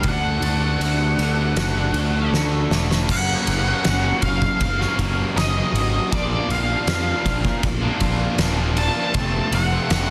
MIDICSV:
0, 0, Header, 1, 7, 480
1, 0, Start_track
1, 0, Tempo, 757576
1, 34, Time_signature, 4, 2, 24, 8
1, 6401, End_track
2, 0, Start_track
2, 0, Title_t, "Lead electric guitar"
2, 0, Program_c, 0, 29
2, 52, Note_on_c, 0, 78, 99
2, 1460, Note_off_c, 0, 78, 0
2, 1973, Note_on_c, 0, 78, 94
2, 2660, Note_off_c, 0, 78, 0
2, 2675, Note_on_c, 0, 77, 97
2, 3402, Note_off_c, 0, 77, 0
2, 3404, Note_on_c, 0, 75, 87
2, 3881, Note_off_c, 0, 75, 0
2, 3884, Note_on_c, 0, 74, 101
2, 4104, Note_off_c, 0, 74, 0
2, 4128, Note_on_c, 0, 77, 108
2, 5563, Note_on_c, 0, 81, 111
2, 5604, Note_off_c, 0, 77, 0
2, 6047, Note_off_c, 0, 81, 0
2, 6050, Note_on_c, 0, 78, 95
2, 6401, Note_off_c, 0, 78, 0
2, 6401, End_track
3, 0, Start_track
3, 0, Title_t, "Clean electric guitar"
3, 0, Program_c, 1, 27
3, 992, Note_on_c, 1, 66, 66
3, 1471, Note_off_c, 1, 66, 0
3, 6401, End_track
4, 0, Start_track
4, 0, Title_t, "Distorted electric guitar"
4, 0, Program_c, 2, 30
4, 36, Note_on_c, 2, 50, 83
4, 42, Note_on_c, 2, 57, 97
4, 44, Note_on_c, 2, 62, 92
4, 47, Note_on_c, 2, 66, 105
4, 49, Note_on_c, 2, 69, 99
4, 266, Note_off_c, 2, 57, 0
4, 269, Note_off_c, 2, 62, 0
4, 274, Note_on_c, 2, 57, 76
4, 276, Note_off_c, 2, 66, 0
4, 277, Note_on_c, 2, 62, 83
4, 282, Note_off_c, 2, 69, 0
4, 283, Note_on_c, 2, 66, 88
4, 289, Note_on_c, 2, 69, 81
4, 388, Note_off_c, 2, 69, 0
4, 396, Note_off_c, 2, 66, 0
4, 396, Note_on_c, 2, 69, 69
4, 399, Note_off_c, 2, 62, 0
4, 404, Note_on_c, 2, 66, 64
4, 407, Note_on_c, 2, 62, 57
4, 505, Note_off_c, 2, 50, 0
4, 512, Note_off_c, 2, 57, 0
4, 513, Note_on_c, 2, 50, 96
4, 514, Note_off_c, 2, 62, 0
4, 520, Note_off_c, 2, 66, 0
4, 520, Note_on_c, 2, 57, 85
4, 522, Note_on_c, 2, 62, 96
4, 524, Note_off_c, 2, 69, 0
4, 528, Note_on_c, 2, 66, 85
4, 532, Note_on_c, 2, 69, 97
4, 745, Note_off_c, 2, 57, 0
4, 750, Note_off_c, 2, 62, 0
4, 752, Note_on_c, 2, 57, 75
4, 756, Note_off_c, 2, 66, 0
4, 757, Note_on_c, 2, 62, 84
4, 759, Note_off_c, 2, 69, 0
4, 763, Note_on_c, 2, 66, 79
4, 767, Note_on_c, 2, 69, 81
4, 867, Note_off_c, 2, 69, 0
4, 874, Note_on_c, 2, 69, 77
4, 875, Note_off_c, 2, 66, 0
4, 880, Note_off_c, 2, 62, 0
4, 882, Note_on_c, 2, 66, 77
4, 888, Note_on_c, 2, 62, 67
4, 995, Note_off_c, 2, 50, 0
4, 1113, Note_off_c, 2, 69, 0
4, 1114, Note_off_c, 2, 57, 0
4, 1121, Note_on_c, 2, 69, 63
4, 1122, Note_off_c, 2, 66, 0
4, 1126, Note_off_c, 2, 62, 0
4, 1129, Note_on_c, 2, 66, 66
4, 1133, Note_on_c, 2, 62, 61
4, 1241, Note_on_c, 2, 57, 75
4, 1243, Note_off_c, 2, 62, 0
4, 1244, Note_off_c, 2, 66, 0
4, 1247, Note_off_c, 2, 69, 0
4, 1250, Note_on_c, 2, 62, 72
4, 1251, Note_on_c, 2, 66, 71
4, 1255, Note_on_c, 2, 69, 72
4, 1355, Note_off_c, 2, 69, 0
4, 1362, Note_on_c, 2, 69, 68
4, 1364, Note_off_c, 2, 66, 0
4, 1368, Note_off_c, 2, 62, 0
4, 1371, Note_on_c, 2, 66, 54
4, 1376, Note_on_c, 2, 62, 53
4, 1479, Note_off_c, 2, 57, 0
4, 1482, Note_on_c, 2, 50, 75
4, 1483, Note_off_c, 2, 62, 0
4, 1486, Note_off_c, 2, 66, 0
4, 1487, Note_on_c, 2, 57, 96
4, 1490, Note_on_c, 2, 62, 85
4, 1491, Note_off_c, 2, 69, 0
4, 1494, Note_on_c, 2, 66, 103
4, 1498, Note_on_c, 2, 69, 91
4, 1711, Note_off_c, 2, 57, 0
4, 1716, Note_off_c, 2, 62, 0
4, 1719, Note_on_c, 2, 57, 69
4, 1720, Note_off_c, 2, 66, 0
4, 1723, Note_on_c, 2, 62, 81
4, 1724, Note_off_c, 2, 69, 0
4, 1728, Note_on_c, 2, 66, 72
4, 1732, Note_on_c, 2, 69, 73
4, 1944, Note_off_c, 2, 57, 0
4, 1945, Note_off_c, 2, 50, 0
4, 1946, Note_off_c, 2, 62, 0
4, 1948, Note_off_c, 2, 66, 0
4, 1950, Note_off_c, 2, 69, 0
4, 1963, Note_on_c, 2, 42, 92
4, 1968, Note_on_c, 2, 49, 88
4, 1969, Note_on_c, 2, 54, 97
4, 1972, Note_on_c, 2, 58, 109
4, 1975, Note_on_c, 2, 61, 98
4, 1979, Note_on_c, 2, 66, 104
4, 2316, Note_off_c, 2, 66, 0
4, 2320, Note_off_c, 2, 61, 0
4, 2323, Note_on_c, 2, 66, 69
4, 2326, Note_off_c, 2, 54, 0
4, 2327, Note_on_c, 2, 61, 73
4, 2332, Note_off_c, 2, 58, 0
4, 2334, Note_on_c, 2, 54, 57
4, 2334, Note_on_c, 2, 58, 68
4, 2437, Note_off_c, 2, 42, 0
4, 2438, Note_off_c, 2, 49, 0
4, 2444, Note_off_c, 2, 54, 0
4, 2445, Note_on_c, 2, 42, 97
4, 2445, Note_on_c, 2, 49, 95
4, 2449, Note_off_c, 2, 58, 0
4, 2449, Note_off_c, 2, 61, 0
4, 2450, Note_off_c, 2, 66, 0
4, 2452, Note_on_c, 2, 54, 104
4, 2452, Note_on_c, 2, 58, 103
4, 2456, Note_on_c, 2, 61, 114
4, 2457, Note_on_c, 2, 66, 108
4, 2676, Note_off_c, 2, 54, 0
4, 2683, Note_on_c, 2, 54, 71
4, 2684, Note_off_c, 2, 61, 0
4, 2688, Note_off_c, 2, 58, 0
4, 2689, Note_off_c, 2, 66, 0
4, 2691, Note_on_c, 2, 58, 89
4, 2691, Note_on_c, 2, 61, 87
4, 2697, Note_on_c, 2, 66, 79
4, 2798, Note_off_c, 2, 66, 0
4, 2800, Note_off_c, 2, 61, 0
4, 2804, Note_off_c, 2, 58, 0
4, 2808, Note_off_c, 2, 54, 0
4, 2921, Note_off_c, 2, 42, 0
4, 2921, Note_off_c, 2, 49, 0
4, 3039, Note_on_c, 2, 66, 76
4, 3045, Note_on_c, 2, 61, 77
4, 3050, Note_on_c, 2, 58, 65
4, 3054, Note_on_c, 2, 54, 59
4, 3146, Note_off_c, 2, 54, 0
4, 3153, Note_on_c, 2, 54, 71
4, 3154, Note_off_c, 2, 58, 0
4, 3157, Note_off_c, 2, 61, 0
4, 3161, Note_off_c, 2, 66, 0
4, 3161, Note_on_c, 2, 58, 71
4, 3165, Note_on_c, 2, 61, 74
4, 3169, Note_on_c, 2, 66, 77
4, 3395, Note_off_c, 2, 54, 0
4, 3396, Note_on_c, 2, 42, 91
4, 3399, Note_on_c, 2, 49, 93
4, 3401, Note_off_c, 2, 58, 0
4, 3402, Note_off_c, 2, 61, 0
4, 3402, Note_on_c, 2, 54, 91
4, 3406, Note_off_c, 2, 66, 0
4, 3408, Note_on_c, 2, 58, 92
4, 3409, Note_on_c, 2, 61, 90
4, 3413, Note_on_c, 2, 66, 90
4, 3506, Note_off_c, 2, 66, 0
4, 3513, Note_off_c, 2, 61, 0
4, 3513, Note_on_c, 2, 66, 75
4, 3516, Note_off_c, 2, 58, 0
4, 3521, Note_off_c, 2, 54, 0
4, 3521, Note_on_c, 2, 61, 67
4, 3524, Note_on_c, 2, 58, 68
4, 3528, Note_on_c, 2, 54, 57
4, 3625, Note_off_c, 2, 54, 0
4, 3632, Note_off_c, 2, 58, 0
4, 3632, Note_on_c, 2, 54, 74
4, 3639, Note_off_c, 2, 61, 0
4, 3639, Note_off_c, 2, 66, 0
4, 3640, Note_on_c, 2, 58, 78
4, 3646, Note_on_c, 2, 66, 99
4, 3647, Note_on_c, 2, 61, 77
4, 3756, Note_off_c, 2, 42, 0
4, 3758, Note_off_c, 2, 49, 0
4, 3860, Note_off_c, 2, 54, 0
4, 3864, Note_off_c, 2, 58, 0
4, 3867, Note_off_c, 2, 61, 0
4, 3867, Note_off_c, 2, 66, 0
4, 3874, Note_on_c, 2, 46, 93
4, 3878, Note_on_c, 2, 53, 89
4, 3881, Note_on_c, 2, 58, 95
4, 3882, Note_on_c, 2, 62, 93
4, 3888, Note_on_c, 2, 65, 99
4, 4238, Note_off_c, 2, 65, 0
4, 4241, Note_off_c, 2, 62, 0
4, 4241, Note_on_c, 2, 65, 78
4, 4247, Note_off_c, 2, 58, 0
4, 4249, Note_on_c, 2, 62, 67
4, 4255, Note_on_c, 2, 58, 56
4, 4349, Note_off_c, 2, 46, 0
4, 4356, Note_off_c, 2, 58, 0
4, 4357, Note_on_c, 2, 46, 101
4, 4359, Note_off_c, 2, 53, 0
4, 4362, Note_on_c, 2, 53, 98
4, 4363, Note_off_c, 2, 62, 0
4, 4364, Note_on_c, 2, 58, 105
4, 4370, Note_off_c, 2, 65, 0
4, 4371, Note_on_c, 2, 62, 102
4, 4373, Note_on_c, 2, 65, 110
4, 4588, Note_off_c, 2, 53, 0
4, 4589, Note_off_c, 2, 58, 0
4, 4590, Note_on_c, 2, 53, 77
4, 4593, Note_off_c, 2, 62, 0
4, 4597, Note_on_c, 2, 58, 80
4, 4601, Note_off_c, 2, 65, 0
4, 4601, Note_on_c, 2, 62, 88
4, 4604, Note_on_c, 2, 65, 91
4, 4709, Note_off_c, 2, 58, 0
4, 4709, Note_off_c, 2, 65, 0
4, 4710, Note_off_c, 2, 53, 0
4, 4710, Note_off_c, 2, 62, 0
4, 4836, Note_off_c, 2, 46, 0
4, 4951, Note_on_c, 2, 65, 63
4, 4956, Note_on_c, 2, 62, 67
4, 4968, Note_on_c, 2, 58, 59
4, 5072, Note_off_c, 2, 58, 0
4, 5072, Note_on_c, 2, 53, 74
4, 5074, Note_off_c, 2, 62, 0
4, 5079, Note_on_c, 2, 58, 72
4, 5080, Note_off_c, 2, 65, 0
4, 5082, Note_on_c, 2, 62, 71
4, 5088, Note_on_c, 2, 65, 86
4, 5314, Note_off_c, 2, 53, 0
4, 5318, Note_on_c, 2, 46, 90
4, 5319, Note_off_c, 2, 58, 0
4, 5319, Note_off_c, 2, 62, 0
4, 5321, Note_on_c, 2, 53, 89
4, 5325, Note_off_c, 2, 65, 0
4, 5327, Note_on_c, 2, 58, 87
4, 5327, Note_on_c, 2, 62, 92
4, 5333, Note_on_c, 2, 65, 96
4, 5434, Note_off_c, 2, 65, 0
4, 5441, Note_on_c, 2, 65, 76
4, 5445, Note_off_c, 2, 62, 0
4, 5450, Note_off_c, 2, 58, 0
4, 5452, Note_on_c, 2, 62, 73
4, 5457, Note_on_c, 2, 58, 69
4, 5552, Note_off_c, 2, 53, 0
4, 5554, Note_off_c, 2, 58, 0
4, 5560, Note_off_c, 2, 62, 0
4, 5560, Note_on_c, 2, 53, 76
4, 5561, Note_on_c, 2, 58, 73
4, 5565, Note_off_c, 2, 65, 0
4, 5567, Note_on_c, 2, 62, 81
4, 5573, Note_on_c, 2, 65, 80
4, 5676, Note_off_c, 2, 46, 0
4, 5783, Note_off_c, 2, 53, 0
4, 5784, Note_off_c, 2, 58, 0
4, 5787, Note_off_c, 2, 62, 0
4, 5789, Note_off_c, 2, 65, 0
4, 5800, Note_on_c, 2, 41, 88
4, 5801, Note_on_c, 2, 48, 105
4, 5807, Note_on_c, 2, 53, 85
4, 5808, Note_on_c, 2, 57, 109
4, 5813, Note_on_c, 2, 60, 112
4, 5813, Note_on_c, 2, 65, 97
4, 6151, Note_off_c, 2, 65, 0
4, 6157, Note_off_c, 2, 60, 0
4, 6159, Note_on_c, 2, 65, 74
4, 6160, Note_on_c, 2, 60, 67
4, 6161, Note_off_c, 2, 57, 0
4, 6163, Note_off_c, 2, 53, 0
4, 6168, Note_on_c, 2, 57, 67
4, 6171, Note_on_c, 2, 53, 60
4, 6270, Note_off_c, 2, 41, 0
4, 6273, Note_off_c, 2, 48, 0
4, 6277, Note_on_c, 2, 41, 97
4, 6278, Note_off_c, 2, 53, 0
4, 6279, Note_off_c, 2, 57, 0
4, 6280, Note_on_c, 2, 48, 104
4, 6284, Note_off_c, 2, 60, 0
4, 6285, Note_off_c, 2, 65, 0
4, 6286, Note_on_c, 2, 53, 101
4, 6286, Note_on_c, 2, 57, 108
4, 6287, Note_on_c, 2, 60, 120
4, 6293, Note_on_c, 2, 65, 97
4, 6401, Note_off_c, 2, 41, 0
4, 6401, Note_off_c, 2, 48, 0
4, 6401, Note_off_c, 2, 53, 0
4, 6401, Note_off_c, 2, 57, 0
4, 6401, Note_off_c, 2, 60, 0
4, 6401, Note_off_c, 2, 65, 0
4, 6401, End_track
5, 0, Start_track
5, 0, Title_t, "Picked electric bass"
5, 0, Program_c, 3, 34
5, 28, Note_on_c, 3, 38, 94
5, 246, Note_off_c, 3, 38, 0
5, 259, Note_on_c, 3, 38, 88
5, 482, Note_off_c, 3, 38, 0
5, 505, Note_on_c, 3, 38, 85
5, 725, Note_off_c, 3, 38, 0
5, 748, Note_on_c, 3, 38, 91
5, 967, Note_off_c, 3, 38, 0
5, 986, Note_on_c, 3, 30, 92
5, 1206, Note_off_c, 3, 30, 0
5, 1222, Note_on_c, 3, 38, 92
5, 1444, Note_off_c, 3, 38, 0
5, 1465, Note_on_c, 3, 38, 94
5, 1686, Note_off_c, 3, 38, 0
5, 1714, Note_on_c, 3, 28, 87
5, 1931, Note_off_c, 3, 28, 0
5, 1958, Note_on_c, 3, 30, 89
5, 2115, Note_off_c, 3, 30, 0
5, 2203, Note_on_c, 3, 30, 108
5, 2359, Note_off_c, 3, 30, 0
5, 2451, Note_on_c, 3, 30, 85
5, 2604, Note_off_c, 3, 30, 0
5, 2676, Note_on_c, 3, 30, 87
5, 2834, Note_off_c, 3, 30, 0
5, 2915, Note_on_c, 3, 30, 96
5, 3073, Note_off_c, 3, 30, 0
5, 3160, Note_on_c, 3, 30, 91
5, 3316, Note_off_c, 3, 30, 0
5, 3396, Note_on_c, 3, 30, 102
5, 3554, Note_off_c, 3, 30, 0
5, 3632, Note_on_c, 3, 32, 92
5, 3791, Note_off_c, 3, 32, 0
5, 3879, Note_on_c, 3, 34, 96
5, 4036, Note_off_c, 3, 34, 0
5, 4118, Note_on_c, 3, 34, 102
5, 4275, Note_off_c, 3, 34, 0
5, 4354, Note_on_c, 3, 41, 100
5, 4512, Note_off_c, 3, 41, 0
5, 4595, Note_on_c, 3, 34, 96
5, 4752, Note_off_c, 3, 34, 0
5, 4836, Note_on_c, 3, 34, 100
5, 4994, Note_off_c, 3, 34, 0
5, 5077, Note_on_c, 3, 34, 88
5, 5234, Note_off_c, 3, 34, 0
5, 5310, Note_on_c, 3, 27, 98
5, 5626, Note_off_c, 3, 27, 0
5, 5793, Note_on_c, 3, 29, 104
5, 5951, Note_off_c, 3, 29, 0
5, 6034, Note_on_c, 3, 29, 101
5, 6192, Note_off_c, 3, 29, 0
5, 6274, Note_on_c, 3, 29, 98
5, 6401, Note_off_c, 3, 29, 0
5, 6401, End_track
6, 0, Start_track
6, 0, Title_t, "Muted distorted electric guitar strokes"
6, 2806, Note_on_c, 9, 29, 58
6, 2869, Note_off_c, 9, 29, 0
6, 2923, Note_on_c, 9, 29, 50
6, 2986, Note_off_c, 9, 29, 0
6, 4716, Note_on_c, 9, 29, 64
6, 4780, Note_off_c, 9, 29, 0
6, 4839, Note_on_c, 9, 29, 52
6, 4902, Note_off_c, 9, 29, 0
6, 6401, End_track
7, 0, Start_track
7, 0, Title_t, "Drums"
7, 20, Note_on_c, 9, 51, 89
7, 27, Note_on_c, 9, 36, 104
7, 84, Note_off_c, 9, 51, 0
7, 90, Note_off_c, 9, 36, 0
7, 268, Note_on_c, 9, 51, 76
7, 331, Note_off_c, 9, 51, 0
7, 514, Note_on_c, 9, 51, 78
7, 577, Note_off_c, 9, 51, 0
7, 753, Note_on_c, 9, 51, 62
7, 817, Note_off_c, 9, 51, 0
7, 991, Note_on_c, 9, 51, 84
7, 995, Note_on_c, 9, 38, 108
7, 1055, Note_off_c, 9, 51, 0
7, 1059, Note_off_c, 9, 38, 0
7, 1229, Note_on_c, 9, 51, 67
7, 1293, Note_off_c, 9, 51, 0
7, 1481, Note_on_c, 9, 38, 60
7, 1544, Note_off_c, 9, 38, 0
7, 1719, Note_on_c, 9, 38, 86
7, 1782, Note_off_c, 9, 38, 0
7, 1845, Note_on_c, 9, 38, 80
7, 1908, Note_off_c, 9, 38, 0
7, 1958, Note_on_c, 9, 36, 111
7, 1961, Note_on_c, 9, 49, 122
7, 2022, Note_off_c, 9, 36, 0
7, 2025, Note_off_c, 9, 49, 0
7, 2199, Note_on_c, 9, 51, 91
7, 2262, Note_off_c, 9, 51, 0
7, 2436, Note_on_c, 9, 51, 104
7, 2439, Note_on_c, 9, 38, 107
7, 2499, Note_off_c, 9, 51, 0
7, 2503, Note_off_c, 9, 38, 0
7, 2674, Note_on_c, 9, 51, 80
7, 2678, Note_on_c, 9, 36, 77
7, 2738, Note_off_c, 9, 51, 0
7, 2741, Note_off_c, 9, 36, 0
7, 2799, Note_on_c, 9, 36, 86
7, 2863, Note_off_c, 9, 36, 0
7, 2918, Note_on_c, 9, 51, 121
7, 2920, Note_on_c, 9, 36, 127
7, 2981, Note_off_c, 9, 51, 0
7, 2983, Note_off_c, 9, 36, 0
7, 3048, Note_on_c, 9, 38, 34
7, 3111, Note_off_c, 9, 38, 0
7, 3161, Note_on_c, 9, 36, 83
7, 3162, Note_on_c, 9, 51, 92
7, 3224, Note_off_c, 9, 36, 0
7, 3226, Note_off_c, 9, 51, 0
7, 3405, Note_on_c, 9, 51, 91
7, 3409, Note_on_c, 9, 38, 101
7, 3468, Note_off_c, 9, 51, 0
7, 3472, Note_off_c, 9, 38, 0
7, 3646, Note_on_c, 9, 51, 77
7, 3710, Note_off_c, 9, 51, 0
7, 3881, Note_on_c, 9, 36, 123
7, 3883, Note_on_c, 9, 51, 105
7, 3944, Note_off_c, 9, 36, 0
7, 3947, Note_off_c, 9, 51, 0
7, 4121, Note_on_c, 9, 51, 79
7, 4184, Note_off_c, 9, 51, 0
7, 4355, Note_on_c, 9, 51, 97
7, 4359, Note_on_c, 9, 38, 114
7, 4418, Note_off_c, 9, 51, 0
7, 4422, Note_off_c, 9, 38, 0
7, 4598, Note_on_c, 9, 36, 82
7, 4599, Note_on_c, 9, 51, 73
7, 4662, Note_off_c, 9, 36, 0
7, 4663, Note_off_c, 9, 51, 0
7, 4718, Note_on_c, 9, 36, 86
7, 4781, Note_off_c, 9, 36, 0
7, 4836, Note_on_c, 9, 51, 107
7, 4837, Note_on_c, 9, 36, 113
7, 4899, Note_off_c, 9, 51, 0
7, 4900, Note_off_c, 9, 36, 0
7, 5071, Note_on_c, 9, 51, 82
7, 5075, Note_on_c, 9, 36, 82
7, 5135, Note_off_c, 9, 51, 0
7, 5139, Note_off_c, 9, 36, 0
7, 5312, Note_on_c, 9, 51, 99
7, 5315, Note_on_c, 9, 38, 95
7, 5375, Note_off_c, 9, 51, 0
7, 5379, Note_off_c, 9, 38, 0
7, 5555, Note_on_c, 9, 51, 81
7, 5618, Note_off_c, 9, 51, 0
7, 5791, Note_on_c, 9, 51, 99
7, 5795, Note_on_c, 9, 36, 118
7, 5855, Note_off_c, 9, 51, 0
7, 5859, Note_off_c, 9, 36, 0
7, 6035, Note_on_c, 9, 51, 91
7, 6098, Note_off_c, 9, 51, 0
7, 6274, Note_on_c, 9, 51, 114
7, 6278, Note_on_c, 9, 38, 107
7, 6338, Note_off_c, 9, 51, 0
7, 6342, Note_off_c, 9, 38, 0
7, 6401, End_track
0, 0, End_of_file